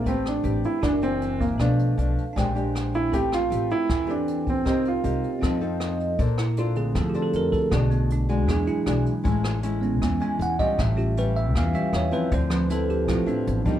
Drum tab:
HH |xxxxxxxx|xxxxxxxx|xxxxxxxx|xxxxxxxx|
SD |-r--r---|r---r-r-|-r--r---|r---r-r-|
BD |o---o--o|o---o---|o---o--o|o---o---|

HH |xxxxxxxx|xxxxxxxx|xxxxxxxx|xxxxxxxx|
SD |-r--r---|r---r-r-|-r--r---|r---r-r-|
BD |o---o--o|o---o---|o---o--o|o---o---|

HH |xxxxxxxx|
SD |-r--r---|
BD |o---o--o|